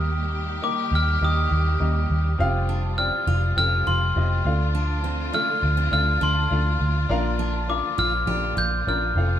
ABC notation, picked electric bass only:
X:1
M:4/4
L:1/16
Q:1/4=102
K:Bb
V:1 name="Picked electric bass" clef=bass
E,,4- E,, z E,,2 E,,2 E,,2 E,,2 E,,2 | F,,,4- F,,, z F,,,2 F,,,2 F,,,2 F,,,2 D,,2- | D,,4- D,, z D,,2 D,,2 D,,2 D,,2 D,,2 | B,,,4- B,,, z B,,,2 B,,,2 B,,,2 B,,,2 F,,,2 |]